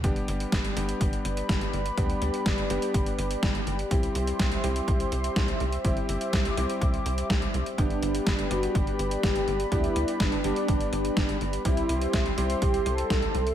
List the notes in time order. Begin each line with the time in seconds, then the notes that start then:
0.04 G1 G3 B3 D4 G4 B4 D5 B5, kick, closed hi-hat
0.16 closed hi-hat
0.28 G1, closed hi-hat
0.40 closed hi-hat
0.52 G1, kick, snare, closed hi-hat
0.65 closed hi-hat
0.77 G1 G3 B3 D4 G4, closed hi-hat
0.89 closed hi-hat
1.01 G1, kick, closed hi-hat
1.13 closed hi-hat
1.25 G1, closed hi-hat
1.37 closed hi-hat
1.49 G1, kick, snare, closed hi-hat
1.61 closed hi-hat
1.73 G1, closed hi-hat
1.86 closed hi-hat
1.98 D2 G3 B3 D4 G4, kick, closed hi-hat
2.10 closed hi-hat
2.22 D2, closed hi-hat
2.34 closed hi-hat
2.46 G1, kick, snare, closed hi-hat
2.58 closed hi-hat
2.70 G1 G3 B3 D4 G4, closed hi-hat
2.82 closed hi-hat
2.94 G1, kick, closed hi-hat
3.06 closed hi-hat
3.19 G1, closed hi-hat
3.31 closed hi-hat
3.43 G1, kick, snare, closed hi-hat
3.55 closed hi-hat
3.67 G1, closed hi-hat
3.79 closed hi-hat
3.91 C2 G3 C4 E4 G4 C5 E5 C6, kick, closed hi-hat
4.03 closed hi-hat
4.15 C2, closed hi-hat
4.27 closed hi-hat
4.39 C2, kick, snare, closed hi-hat
4.52 closed hi-hat
4.64 C2 G3 C4 E4 G4, closed hi-hat
4.76 closed hi-hat
4.88 C2, kick, closed hi-hat
5.00 closed hi-hat
5.12 C2, closed hi-hat
5.24 closed hi-hat
5.36 C2, kick, snare, closed hi-hat
5.48 closed hi-hat
5.60 C2, closed hi-hat
5.72 closed hi-hat
5.85 G1 G3 C4 E4 G4 D6, kick, closed hi-hat
5.97 closed hi-hat
6.09 G1, closed hi-hat
6.21 closed hi-hat
6.33 C2, kick, snare, closed hi-hat
6.45 closed hi-hat
6.57 C2 G3 C4 E4 G4, closed hi-hat
6.70 closed hi-hat
6.81 C2, kick, closed hi-hat
6.94 closed hi-hat
7.06 C2, closed hi-hat
7.18 closed hi-hat
7.30 C2, kick, snare, closed hi-hat
7.42 closed hi-hat
7.54 C2, closed hi-hat
7.66 closed hi-hat
7.78 G1 G3 B3 D4 G4 B4 D5 B5, kick, closed hi-hat
7.90 closed hi-hat
8.02 G1, closed hi-hat
8.15 closed hi-hat
8.27 G1, kick, snare, closed hi-hat
8.39 closed hi-hat
8.51 G1 G3 B3 D4 F#4 G4, closed hi-hat
8.63 closed hi-hat
8.75 G1 G4, kick, closed hi-hat
8.87 closed hi-hat
8.99 G1, closed hi-hat
9.11 closed hi-hat
9.23 G1 G4, kick, snare, closed hi-hat
9.36 closed hi-hat
9.47 G1, closed hi-hat
9.60 closed hi-hat
9.72 D2 G3 B3 D4 E4 G4, kick, closed hi-hat
9.84 closed hi-hat
9.96 D2, closed hi-hat
10.08 closed hi-hat
10.20 G1 D4, kick, snare, closed hi-hat
10.32 closed hi-hat
10.44 G1 G3 B3 D4 G4, closed hi-hat
10.56 closed hi-hat
10.68 G1, kick, closed hi-hat
10.81 closed hi-hat
10.92 G1, closed hi-hat
11.05 closed hi-hat
11.17 G1, kick, snare, closed hi-hat
11.29 closed hi-hat
11.41 G1, closed hi-hat
11.53 closed hi-hat
11.65 C2 G3 C4 E4 G4 C5 E5 C6, kick, closed hi-hat
11.77 closed hi-hat
11.89 C2, closed hi-hat
12.01 closed hi-hat
12.13 C2, kick, snare, closed hi-hat
12.26 closed hi-hat
12.38 C2 G3 C4 E4 G4, closed hi-hat
12.50 closed hi-hat
12.62 C2 G4, kick, closed hi-hat
12.74 closed hi-hat
12.86 C2 A4, closed hi-hat
12.98 closed hi-hat
13.10 C2, kick, snare, closed hi-hat
13.22 closed hi-hat
13.35 C2, closed hi-hat
13.47 closed hi-hat